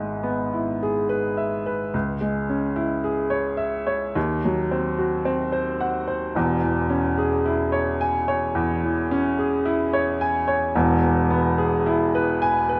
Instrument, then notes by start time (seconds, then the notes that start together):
grand piano
Already playing: G#2 G#3 E4 G#4 B4 E5
0.23 B3
0.53 E4
0.83 G#4
1.09 B4
1.37 E5
1.66 B4
1.94 C#2
2.21 G#3
2.50 C#4
2.76 E4
3.04 G#4
3.30 C#5
3.57 E5
3.87 C#5
4.15 D#2
4.45 F#3
4.71 C4
4.98 F#4
5.25 C4
5.52 C5
5.80 F#5
6.08 C5
6.35 E1 E2
6.63 E3
6.90 C#4
7.18 G#4
7.45 E4
7.72 C#5
8.01 G#5
8.28 C#5
8.55 E2
8.83 E3
9.11 C#4
9.38 G#4
9.65 E4
9.93 C#5
10.21 G#5
10.48 C#5
10.75 E1 E2
11.04 E3
11.30 B3
11.58 G#4
11.86 E4
12.15 B4
12.42 G#5
12.69 B4